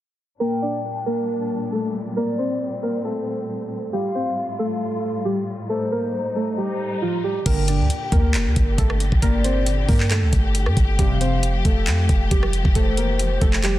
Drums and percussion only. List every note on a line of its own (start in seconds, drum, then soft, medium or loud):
7.46 kick loud
7.46 closed hi-hat medium
7.46 crash loud
7.68 closed hi-hat medium
7.90 closed hi-hat medium
8.12 kick medium
8.12 closed hi-hat medium
8.34 clap loud
8.34 closed hi-hat medium
8.56 kick loud
8.56 closed hi-hat medium
8.78 kick loud
8.78 closed hi-hat medium
8.90 cross-stick loud
9.00 closed hi-hat medium
9.12 kick loud
9.22 kick loud
9.22 closed hi-hat medium
9.44 closed hi-hat medium
9.66 closed hi-hat medium
9.89 kick medium
9.89 open hi-hat soft
10.00 clap medium
10.11 clap loud
10.11 closed hi-hat medium
10.33 kick loud
10.33 closed hi-hat medium
10.55 closed hi-hat medium
10.66 cross-stick medium
10.77 kick loud
10.77 closed hi-hat medium
10.99 kick loud
10.99 closed hi-hat medium
11.21 closed hi-hat medium
11.43 closed hi-hat medium
11.65 kick medium
11.65 closed hi-hat medium
11.87 clap loud
11.87 closed hi-hat medium
12.09 kick medium
12.09 closed hi-hat medium
12.31 kick loud
12.31 closed hi-hat medium
12.43 cross-stick loud
12.53 closed hi-hat medium
12.65 kick loud
12.75 kick loud
12.75 closed hi-hat medium
12.97 closed hi-hat medium
13.19 closed hi-hat medium
13.41 kick medium
13.41 closed hi-hat medium
13.53 clap medium
13.64 clap loud
13.64 closed hi-hat medium